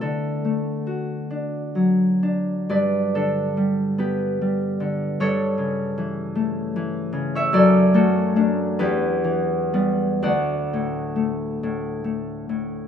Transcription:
<<
  \new Staff \with { instrumentName = "Harp" } { \time 6/8 \key g \major \tempo 4. = 47 a'2. | <b' d''>8 <d' a'>4 <g' b'>4. | <a' cis''>2~ <a' cis''>8. <cis'' e''>16 | <a' d''>8 <fis' a'>4 <g' b'>4. |
<d'' fis''>2. | }
  \new Staff \with { instrumentName = "Harp" } { \clef bass \time 6/8 \key g \major <d a>8 a8 fis'8 d'8 fis8 d'8 | g,8 d8 g8 b8 g8 d8 | g,8 cis8 e8 a8 e8 cis8 | fis,8 a8 <a d'>8 e,8 e8 <g b>8 |
d,8 a,8 a8 a,8 a8 a,8 | }
>>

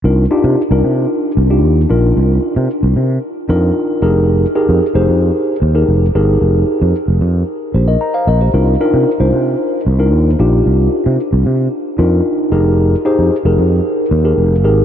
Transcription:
<<
  \new Staff \with { instrumentName = "Tine electric piano" } { \time 4/4 \key c \minor \tempo 4 = 113 << { r1 | r1 | r1 | r2 r8 <g' c''>16 <bes' ees''>16 bes''16 <c'' f''>16 <bes' ees''>16 <g' c''>16~ |
<g' c''>16 r2. r8. | r1 | r1 | } \\ { <d' ees' f' bes'>8 <d' ees' f' g'>8 r16 <d' ees' f' bes'>4~ <d' ees' f' bes'>16 r16 <d' ees' f' g'>8 r16 <d' ees' f' bes'>8~ | <d' ees' f' bes'>4 r4. <d' ees' f' bes'>4 <ees' g' aes' bes'>8~ | <ees' g' aes' bes'>16 r16 <ees' g' aes' bes'>8 r16 <ees' g' aes' c''>4~ <ees' g' aes' c''>16 r16 <ees' g' aes' bes'>8 r16 <ees' g' aes' bes'>8~ | <ees' g' aes' bes'>4 r2. |
<d' ees' f' bes'>8 <d' ees' f' bes'>8 r16 <d' ees' f' c''>4~ <d' ees' f' c''>16 r16 <d' ees' f' bes'>8 r16 <d' ees' f' g'>8~ | <d' ees' f' g'>4 r4. <d' ees' f' bes'>4 <ees' g' aes' bes'>8~ | <ees' g' aes' bes'>16 r16 <ees' g' aes' c''>8 r16 <ees' g' aes' bes'>4~ <ees' g' aes' bes'>16 r16 <ees' g' aes' bes'>8 r16 <ees' g' aes' bes'>8 | } >> }
  \new Staff \with { instrumentName = "Fretless electric bass" } { \clef bass \time 4/4 \key c \minor c,8 r16 c16 r16 c,16 c8 r8 c,8 ees,8 bes,,8 | c,8 r16 c16 r16 c,16 c8 r8 f,8 r8 f,,8~ | f,,8 r16 f,16 r16 f,,16 f,8 r8 ees,8 f,,8 g,,8 | f,,8 r16 f,16 r16 f,,16 f,8 r8 bes,,8 r8 bes,,8 |
c,8 r16 c16 r16 c,16 c8 r8 c,8 ees,8 bes,,8 | c,8 r16 c16 r16 c,16 c8 r8 f,8 r8 f,,8~ | f,,8 r16 f,16 r16 f,,16 f,8 r8 ees,8 f,,8 aes,,8 | }
>>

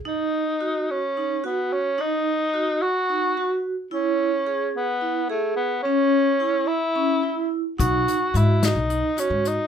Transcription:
<<
  \new Staff \with { instrumentName = "Vibraphone" } { \time 7/8 \key b \mixolydian \tempo 4 = 108 dis'4 fis'4 dis'8 fis'4 | dis'4 fis'4 dis'8 fis'4 | e'4 gis'4 e'8 gis'4 | cis'4 e'4 cis'8 e'4 |
dis'4 fis'4 dis'8 fis'4 | }
  \new Staff \with { instrumentName = "Tenor saxophone" } { \time 7/8 \key b \mixolydian dis'4. cis'4 b8 cis'8 | dis'4. fis'4. r8 | cis'4. b4 a8 b8 | cis'4. e'4. r8 |
fis'4 e'8 dis'4 cis'8 dis'8 | }
  \new Staff \with { instrumentName = "Upright bass" } { \clef bass \time 7/8 \key b \mixolydian r2. r8 | r2. r8 | r2. r8 | r2. r8 |
b,,8 r8 gis,8. b,,8 r8 gis,8 r16 | }
  \new DrumStaff \with { instrumentName = "Drums" } \drummode { \time 7/8 r4. r4 r4 | r4. r4 r4 | r4. r4 r4 | r4. r4 r4 |
<hh bd>8 hh8 hh8 <hh sn>8 hh8 hh8 hh8 | }
>>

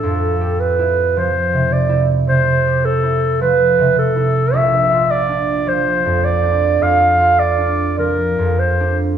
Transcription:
<<
  \new Staff \with { instrumentName = "Clarinet" } { \time 4/4 \key bes \lydian \tempo 4 = 53 a'8 b'8 c''8 d''8 c''8 a'8 b'8 a'8 | e''8 d''8 c''8 d''8 f''8 d''8 bes'8 c''8 | }
  \new Staff \with { instrumentName = "Harp" } { \time 4/4 \key bes \lydian \tuplet 3/2 { <f, f a'>8 g'8 e'8 f8 c8 e'8 c8 g'8 e'8 f8 c8 e'8 } | \tuplet 3/2 { bes,,8 f'8 d'8 f8 f,8 d'8 f,8 f'8 d'8 f8 f,8 d'8 } | }
>>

